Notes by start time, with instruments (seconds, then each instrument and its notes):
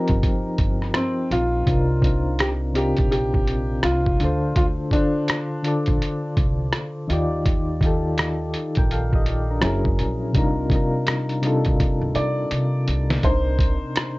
Already playing: synth keys F3 C4 D#4 G4 A#4
0.08 upright bass G1, kick, closed hi-hat
0.23 kick, closed hi-hat
0.58 upright bass G1, kick, closed hi-hat
0.82 cross-stick
0.94 upright piano C4, finger snap, cross-stick, closed hi-hat
1.31 upright bass A#1, upright piano F4, closed hi-hat
1.66 upright bass C2, synth keys C3 C4 D4 D#4, kick, closed hi-hat
1.70 synth keys F4 A#4
2.00 synth keys C3 C4 D4 D#4, kick, closed hi-hat
2.05 synth keys F4 A#4
2.39 upright piano G4, finger snap, cross-stick, closed hi-hat
2.73 synth keys C3 C4 D4 D#4, upright piano G4, closed hi-hat
2.77 synth keys F4 A#4
2.97 upright bass A#1, kick, closed hi-hat
3.11 upright piano G4, closed hi-hat
3.34 kick
3.47 closed hi-hat
3.83 upright bass C2, upright piano F4, finger snap, cross-stick, closed hi-hat
4.06 kick
4.19 upright bass D2, synth keys D3 D4 F4 A4, closed hi-hat
4.25 synth keys C5
4.56 upright bass D2, upright piano F4, kick, closed hi-hat
4.90 synth keys D3 D4 F4, upright piano D4, kick, closed hi-hat
4.94 synth keys A4 C5
5.28 finger snap, cross-stick, closed hi-hat
5.62 synth keys D3 D4 F4, closed hi-hat
5.67 synth keys A4 D5
5.86 upright bass A#1, kick, closed hi-hat
6.02 closed hi-hat
6.37 upright bass C2, kick, closed hi-hat
6.73 finger snap, cross-stick, closed hi-hat
7.07 upright bass D#2, synth keys D#3 D#4 F4, closed hi-hat
7.11 synth keys G4 D5
7.46 kick, closed hi-hat
7.81 synth keys D#3 D#4 F4, kick, closed hi-hat
7.85 synth keys G4 A4
8.18 finger snap, cross-stick, closed hi-hat
8.54 closed hi-hat
8.75 upright bass A#1, synth keys A#4 G5, kick, closed hi-hat
8.91 synth keys A4 F5, closed hi-hat
9.13 synth keys G4 D#5, kick
9.26 synth keys F4 D5, closed hi-hat
9.50 synth keys D4 A#4
9.61 upright bass F#1, synth keys F#3 C#4 E4 G#4, finger snap, cross-stick, closed hi-hat
9.66 synth keys A#4
9.85 kick
9.99 upright bass A#1, closed hi-hat
10.33 upright bass C2, synth keys C3 G3 D4 D#4, kick, closed hi-hat
10.37 synth keys F4 A#4
10.70 synth keys C3 G3 D4 D#4, kick, closed hi-hat
10.74 synth keys F4 A#4
11.07 finger snap, cross-stick, closed hi-hat
11.29 closed hi-hat
11.41 synth keys C3 G3 D4 D#4, closed hi-hat
11.46 synth keys F4 A4
11.65 upright bass D2, kick, closed hi-hat
11.80 kick, closed hi-hat
12.02 upright bass D2
12.15 upright bass C3, upright piano D5, closed hi-hat
12.51 upright bass C3, finger snap, closed hi-hat
12.88 upright bass C2, closed hi-hat
13.10 snare
13.23 upright bass C2, synth keys C3 C4 D4, upright piano C5, kick, closed hi-hat
13.27 synth keys D#4 A#4
13.59 kick, closed hi-hat
13.96 finger snap, cross-stick, closed hi-hat